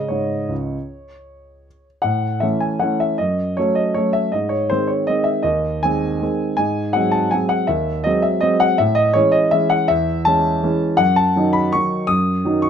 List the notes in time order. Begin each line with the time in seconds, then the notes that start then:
Already playing: C#3 G#3 C#4 D#5
0.08 G#2 C#5
0.49 C#2
2.02 A2 F#5
2.40 E3 A3 C#4 E5
2.60 G#5
2.79 E3 A3 C#4 F#5
3.00 E5
3.18 F#2 D#5
3.57 F#3 A3 C#4 C#5
3.75 D#5
3.94 F#3 A3 C#4 C#5
4.13 E5
4.32 G#2 D#5
4.49 C#5
4.70 D#3 G#3 C4 C5
4.87 C#5
5.07 D#3 G#3 C4 D#5
5.24 E5
5.43 D#2 D#5
5.83 D#3 G#3 C4 G#5
6.22 D#3 G#3 C4
6.57 G#2 G#5
6.93 F#3 G#3 C4 F#5
7.11 A5
7.31 F#3 G#3 C4 G#5
7.49 F#5
7.67 D#2 E5
8.04 F#3 G#3 C4 D#5
8.22 E5
8.41 F#3 G#3 C4 D#5
8.60 F#5
8.78 A2 E5
8.95 D#5
9.13 E3 G#3 C#4 C#5
9.32 D#5
9.51 E3 G#3 C#4 E5
9.70 F#5
9.88 E2 E5
10.25 E3 G#3 C#4 A5
10.63 E3 G#3 C#4
10.97 F#2 F#5
11.16 A5
11.36 D#3 F#3 D#4
11.53 B5
11.72 D#3 F#3 D#4 C#6
12.07 F#2 D#6
12.45 D#3 F#3 D#4
12.62 C#6